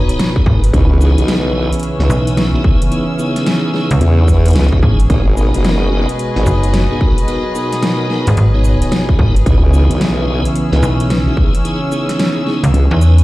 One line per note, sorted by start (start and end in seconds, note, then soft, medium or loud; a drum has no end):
0.00 0.17 G#1 loud
0.00 0.70 B2 medium
0.00 0.33 B3 medium
0.00 0.33 D#4 medium
0.00 0.33 F#4 medium
0.00 0.70 F#4 medium
0.00 0.74 G#4 medium
0.00 2.26 B4 medium
0.00 0.33 C#5 loud
0.00 0.74 D#5 medium
0.00 0.72 A#5 medium
0.09 closed hi-hat medium
0.19 snare loud
0.19 closed hi-hat medium
0.36 0.45 B3 medium
0.36 0.45 D#4 medium
0.36 0.45 F#4 medium
0.36 0.45 G#4 medium
0.36 kick loud
0.46 0.72 G#1 loud
0.46 0.63 B3 medium
0.46 0.63 D#4 medium
0.46 0.63 F#4 medium
0.46 0.63 A#4 medium
0.46 kick loud
0.64 closed hi-hat medium
0.73 1.15 C#2 loud
0.73 5.06 C#3 medium
0.73 5.06 E3 medium
0.73 0.90 B3 medium
0.73 5.06 B3 medium
0.73 6.71 C#4 medium
0.73 0.90 D#4 medium
0.73 0.90 E4 medium
0.73 0.90 G#4 medium
0.73 kick loud
0.73 closed hi-hat medium
0.89 13.24 G#4 medium
1.00 1.53 B3 medium
1.00 1.53 D#4 medium
1.00 1.53 E4 medium
1.00 1.53 G#4 loud
1.00 shaker medium
1.18 1.70 B1 loud
1.18 closed hi-hat medium
1.28 snare loud
1.28 closed hi-hat medium
1.42 5.10 E6 medium
1.55 1.72 B3 loud
1.55 1.72 D#4 medium
1.55 1.72 E4 medium
1.55 1.72 G#4 loud
1.73 closed hi-hat medium
1.80 closed hi-hat soft
1.83 closed hi-hat medium
1.99 2.08 C#2 loud
1.99 2.51 B3 medium
1.99 2.51 D#4 medium
1.99 2.51 E4 medium
1.99 2.51 B4 loud
1.99 snare soft
2.10 2.52 B1 medium
2.10 shaker medium
2.27 closed hi-hat medium
2.37 snare loud
2.37 closed hi-hat medium
2.54 2.63 B3 medium
2.54 2.63 D#4 medium
2.54 2.63 E4 medium
2.54 2.63 F#4 medium
2.64 2.81 B3 medium
2.64 2.81 D#4 medium
2.64 2.81 E4 medium
2.64 2.81 G#4 loud
2.64 kick loud
2.82 closed hi-hat medium
2.91 3.08 B3 medium
2.91 3.08 D#4 medium
2.91 3.08 E4 medium
2.91 3.08 G#4 medium
2.91 closed hi-hat medium
3.19 3.71 B3 medium
3.19 3.71 D#4 medium
3.19 3.71 E4 medium
3.19 3.71 G#4 loud
3.19 shaker medium
3.36 snare soft
3.36 closed hi-hat medium
3.47 snare loud
3.47 closed hi-hat medium
3.74 3.90 B3 medium
3.74 3.90 D#4 medium
3.74 3.90 E4 medium
3.74 3.90 G#4 loud
3.74 snare soft
3.91 3.99 C#2 loud
3.91 closed hi-hat medium
4.01 4.54 E2 medium
4.01 closed hi-hat medium
4.18 4.69 B3 medium
4.18 4.69 D#4 medium
4.18 4.69 E4 medium
4.18 4.69 B4 loud
4.28 kick medium
4.28 shaker medium
4.46 closed hi-hat medium
4.48 closed hi-hat soft
4.50 closed hi-hat soft
4.53 4.70 C#2 loud
4.53 snare loud
4.53 closed hi-hat soft
4.55 closed hi-hat medium
4.64 closed hi-hat soft
4.68 4.81 C#2 loud
4.68 closed hi-hat soft
4.72 4.81 B3 medium
4.72 4.81 D#4 medium
4.72 4.81 E4 medium
4.72 4.81 F#4 medium
4.72 kick loud
4.83 5.08 G#1 medium
4.83 4.99 B3 medium
4.83 4.99 D#4 medium
4.83 4.99 E4 medium
4.83 4.99 G#4 medium
4.83 kick loud
5.00 closed hi-hat medium
5.10 5.52 G#1 loud
5.10 9.43 B2 medium
5.10 7.26 G#3 medium
5.10 5.27 B3 medium
5.10 5.27 D#4 medium
5.10 5.26 F#4 medium
5.10 9.43 F#4 medium
5.10 5.27 A#4 medium
5.10 kick loud
5.10 closed hi-hat medium
5.33 10.23 B4 medium
5.33 9.47 D#5 medium
5.37 5.90 B3 medium
5.37 5.90 D#4 medium
5.37 5.90 F#4 medium
5.37 5.89 A#4 medium
5.37 shaker medium
5.54 6.06 F#1 loud
5.54 closed hi-hat medium
5.65 snare loud
5.65 closed hi-hat soft
5.92 6.08 B3 medium
5.92 6.08 D#4 medium
5.92 6.08 F#4 medium
5.92 6.08 A#4 loud
6.09 closed hi-hat medium
6.19 closed hi-hat medium
6.36 6.45 G#1 loud
6.36 6.87 B3 medium
6.36 6.87 D#4 medium
6.36 6.87 F#4 medium
6.36 6.87 C#5 loud
6.36 snare soft
6.46 6.88 F#1 medium
6.46 shaker medium
6.63 closed hi-hat medium
6.74 snare loud
6.74 closed hi-hat medium
6.91 7.00 B3 medium
6.91 7.00 D#4 medium
6.91 7.00 F#4 medium
6.91 7.00 G#4 medium
7.01 7.17 B3 medium
7.01 7.17 D#4 medium
7.01 7.17 F#4 medium
7.01 7.17 A#4 loud
7.01 kick loud
7.18 closed hi-hat medium
7.28 9.44 F#3 medium
7.28 7.44 B3 medium
7.28 7.44 D#4 medium
7.28 7.44 F#4 medium
7.28 7.44 A#4 medium
7.28 closed hi-hat medium
7.55 8.08 B3 medium
7.55 8.08 D#4 medium
7.55 8.07 F#4 medium
7.55 8.08 A#4 loud
7.55 shaker medium
7.72 snare soft
7.72 closed hi-hat medium
7.82 snare loud
7.82 closed hi-hat medium
8.10 8.26 B3 medium
8.10 8.26 D#4 medium
8.10 8.26 F#4 medium
8.10 8.26 A#4 loud
8.10 snare soft
8.27 8.36 G#1 loud
8.27 closed hi-hat medium
8.37 8.90 G#1 loud
8.37 closed hi-hat soft
8.54 9.06 B3 medium
8.54 9.06 D#4 medium
8.54 9.06 F#4 medium
8.54 9.06 C#5 loud
8.64 shaker medium
8.82 closed hi-hat medium
8.92 snare loud
8.92 closed hi-hat medium
9.09 9.17 B3 medium
9.09 9.17 D#4 medium
9.09 9.17 F#4 medium
9.09 9.18 G#4 medium
9.09 kick loud
9.19 9.45 G#1 loud
9.19 9.35 B3 medium
9.19 9.35 D#4 medium
9.19 9.35 F#4 medium
9.19 9.35 A#4 loud
9.19 kick loud
9.36 closed hi-hat medium
9.46 9.88 C#2 loud
9.46 13.24 C#3 medium
9.46 13.24 E3 medium
9.46 11.62 B3 medium
9.46 9.63 B3 medium
9.46 13.24 C#4 medium
9.46 9.63 D#4 medium
9.46 9.63 E4 medium
9.46 9.63 G#4 medium
9.46 kick loud
9.46 closed hi-hat medium
9.73 10.26 B3 medium
9.73 10.26 D#4 medium
9.73 10.26 E4 medium
9.73 10.26 G#4 loud
9.73 shaker medium
9.90 10.42 B1 loud
9.90 closed hi-hat medium
10.01 13.24 E6 medium
10.01 snare loud
10.01 closed hi-hat medium
10.28 10.44 B3 medium
10.28 10.44 D#4 medium
10.28 10.44 E4 medium
10.28 10.44 G#4 loud
10.45 closed hi-hat medium
10.56 closed hi-hat medium
10.72 10.81 C#2 loud
10.72 11.24 B3 medium
10.72 11.24 D#4 medium
10.72 11.24 E4 medium
10.72 11.24 B4 loud
10.72 snare soft
10.82 11.24 B1 medium
10.82 shaker medium
11.00 closed hi-hat medium
11.10 snare loud
11.10 closed hi-hat medium
11.27 11.36 B3 medium
11.27 11.36 D#4 medium
11.27 11.36 E4 medium
11.27 11.36 F#4 medium
11.37 11.54 B3 medium
11.37 11.53 D#4 medium
11.37 11.53 E4 medium
11.37 11.54 G#4 loud
11.37 kick loud
11.55 closed hi-hat medium
11.64 11.81 B3 medium
11.64 13.24 C#4 medium
11.64 11.81 D#4 medium
11.64 11.81 E4 medium
11.64 11.81 G#4 medium
11.64 closed hi-hat medium
11.92 12.44 B3 medium
11.92 12.44 D#4 medium
11.92 12.44 E4 medium
11.92 12.44 G#4 loud
11.92 shaker medium
12.09 snare soft
12.09 closed hi-hat medium
12.19 snare loud
12.19 closed hi-hat medium
12.46 12.63 B3 loud
12.46 12.63 D#4 medium
12.46 12.63 E4 medium
12.46 12.63 G#4 loud
12.46 snare soft
12.63 12.72 C#2 loud
12.63 closed hi-hat medium
12.74 12.88 C#2 loud
12.74 closed hi-hat medium
12.91 13.24 E2 loud
12.91 13.24 B3 medium
12.91 13.24 D#4 medium
12.91 13.24 E4 medium
12.91 13.24 B4 loud
13.02 shaker medium
13.18 closed hi-hat medium